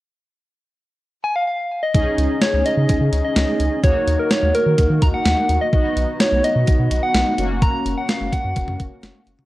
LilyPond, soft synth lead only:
\new Staff \with { instrumentName = "Soft synth lead" } { \time 4/4 \key cis \mixolydian \tempo 4 = 127 r2 r8 gis''16 eis''16 eis''8. dis''16 | dis''4 cis''8 dis''4~ dis''16 dis''4~ dis''16 | cis''8. ais'16 cis''8 ais'4 ais''16 fis''16 fis''8. dis''16 | dis''4 cis''8 dis''4~ dis''16 fis''4~ fis''16 |
ais''8. fis''16 eis''8 fis''2 r8 | }